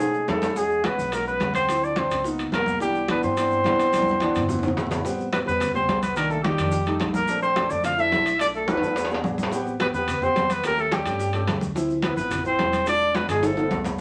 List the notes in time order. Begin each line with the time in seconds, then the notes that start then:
Already playing: B2 G#3 G#4
0.00 A3 C#4 D#4 G#4, high conga, maracas
0.14 high bongo, high conga, maracas
0.28 E2 A3 C#4 D#4 G#4 A4, high bongo, low bongo, high conga, low timbale, maracas
0.42 high conga, low timbale, maracas
0.56 G#3 C#4 F#4 G#4, high bongo, high conga, maracas
0.70 high bongo, high conga, maracas
0.84 G#3 B3 C#4 F#4 B4, high bongo, high conga, high timbale, low timbale, maracas
0.98 B1, high bongo, high conga, maracas
1.12 G#3 A#3 C#4 F#4 A#4, high bongo, high conga, high timbale, maracas
1.26 B3 B4, high bongo, high conga, maracas
1.40 D2 G#3 C#4 F#4, high bongo, low bongo, high conga, high timbale, low timbale, maracas
1.54 C4 C5, high conga, high timbale, maracas
1.68 F3 C4 E4, high bongo, high conga, high timbale, maracas
1.82 D4 D5, high bongo, high conga, maracas
1.96 F3 C4 D4 C5, high bongo, high conga, high timbale, low timbale, maracas
2.10 C#2, high bongo, high conga, high timbale, maracas
2.24 F3 A#3 B3 D#4, high bongo, high conga, maracas
2.38 high bongo, high conga, high timbale, maracas
2.52 C2 F3 A#3 B3 F4 A#4, high bongo, low bongo, high conga, high timbale, low timbale, maracas
2.66 high conga, maracas
2.80 E3 G3 B3 D4 G4, high bongo, high conga, maracas
2.95 high bongo, high conga, maracas
3.08 E3 B3 D4 B4, high bongo, high conga, high timbale, low timbale, maracas
3.23 G2 C4 C5, high bongo, maracas
3.37 E3 B3 D4, high bongo, high conga, high timbale, maracas
3.51 high bongo, high conga, maracas
3.64 C2 E3 B3 D4, high bongo, low bongo, high conga, high timbale, low timbale, maracas
3.79 high timbale, maracas
3.93 E3 B3 D4, high bongo, high conga, high timbale, maracas
4.02 high conga
4.07 high bongo, maracas
4.11 high conga
4.20 E3 B3 D4, high bongo, high conga, high timbale, low timbale, maracas
4.35 G2, high timbale, maracas
4.40 low conga
4.49 E3 B3 E4, high bongo, low conga, maracas
4.59 low conga
4.63 low bongo, high timbale, maracas
4.68 low conga
4.76 A2 E3 B3 E4, low bongo, low conga, low timbale, maracas
4.87 low conga
4.91 low bongo, low timbale, maracas
4.96 low conga
5.04 G3 B3 C4, high bongo, high conga, maracas
5.19 high bongo, high conga, maracas
5.32 G3 B3 C4 B4, high bongo, high conga, high timbale, low timbale, maracas
5.46 E2 G3 B3 C4 B4, high bongo, high conga, maracas
5.60 high bongo, high conga, low conga, high timbale, maracas
5.74 G3 B3 C4 C5, high bongo, high conga, low conga, maracas
5.89 C2, high bongo, low bongo, high conga, high timbale, low timbale, maracas
6.02 B3 B4, high conga, high timbale, maracas
6.16 D#3 A#3 D4 A#4, high bongo, high conga, high timbale, maracas
6.30 A3 A4, high bongo, high conga, maracas
6.43 D#3 G3 A#3 D#4 G4, high bongo, high conga, high timbale, low timbale, maracas
6.58 F2 D#3 A#3 D4, high bongo, high timbale, maracas
6.72 high bongo, high conga, maracas
6.86 G3 A3 D#4, high bongo, high conga, high timbale, maracas
7.00 A#1, high bongo, low bongo, high conga, high timbale, low timbale, maracas
7.14 A#3 A#4, high conga, maracas
7.27 A3 C4 D4, high bongo, high conga, maracas
7.42 C4 C5, high bongo, high conga, maracas
7.56 A3 C4 D4, high bongo, high conga, high timbale, low timbale, maracas
7.70 F2 A3 C4 D4 D5, high bongo, high conga, maracas
7.84 F4 F5, high bongo, high conga, low conga, high timbale, maracas
7.98 A3 C4 D4 E4 E5, high bongo, high conga, maracas
8.12 B1, high bongo, low bongo, high conga, high timbale, low timbale, maracas
8.26 high timbale, maracas
8.39 A3 D4 F4 D5, high bongo, high conga, high timbale, maracas
8.54 A3 A4, high bongo, high conga, maracas
8.68 A3 B3 D4 F4 B4, high bongo, high conga, high timbale, maracas
8.77 high timbale
8.82 E2 A3 D4 F4, high bongo, high conga, maracas
8.87 high timbale
8.96 high bongo, high conga, low timbale, maracas
9.05 low timbale
9.09 B3 D4 G#4, high bongo, high conga, maracas
9.14 low timbale
9.24 A1, high bongo, low bongo, high conga, maracas
9.38 high conga, maracas
9.43 low timbale
9.52 B3 C4 G4, high bongo, high conga, maracas
9.66 high bongo, high conga, maracas
9.80 B3 C4 G4 B4, high bongo, high conga, high timbale, low timbale, maracas
9.94 E2 B3 C4 G4 B4, high conga, maracas
10.08 high bongo, high conga, low conga, high timbale, maracas
10.22 B3 C4 G4 C5, high bongo, high conga, low conga, maracas
10.36 D#2, high bongo, low bongo, high conga, high timbale, low timbale, maracas
10.50 B3 B4, high conga, high timbale, maracas
10.64 A3 A#3 C#4 G4 A#4, high bongo, high conga, high timbale, maracas
10.78 A3 A4, high bongo, high conga, maracas
10.91 G3 A3 C#4 G4, high bongo, high conga, high timbale, low timbale, maracas
11.05 G2 A3 C#4 G4, high bongo, high conga, high timbale, maracas
11.20 high bongo, high conga, maracas
11.33 A3 C#4 G4, high bongo, high conga, high timbale, maracas
11.47 D2, high bongo, low bongo, high conga, high timbale, low timbale, maracas
11.61 high conga, maracas
11.75 F3 C4 E4, high bongo, high conga, maracas
11.89 high bongo, high conga, maracas
12.02 F3 B3 C4 E4 B4, high bongo, high conga, high timbale, low timbale, maracas
12.16 A1 F3 B3 C4 E4 B4, high bongo, high conga, maracas
12.31 high bongo, high conga, low conga, high timbale, maracas
12.45 F3 C4 E4 C5, high bongo, high conga, maracas
12.59 E1, high bongo, low bongo, high conga, high timbale, low timbale, maracas
12.73 high conga, high timbale, maracas
12.86 G#3 D4 F4 D5, high bongo, high timbale, maracas
13.01 high bongo, high conga, maracas
13.15 G#3 B3 D4 F4 B4, high bongo, high conga, high timbale, low timbale, maracas
13.28 G1 G#3 D4 F4 G#4, high bongo, high timbale, maracas
13.43 A3 A4, high bongo, high conga, high timbale, maracas
13.57 A3 B3 F4, high bongo, high conga, high timbale, maracas
13.71 C2, high bongo, low bongo, high conga, low timbale, maracas
13.85 high conga, low timbale, maracas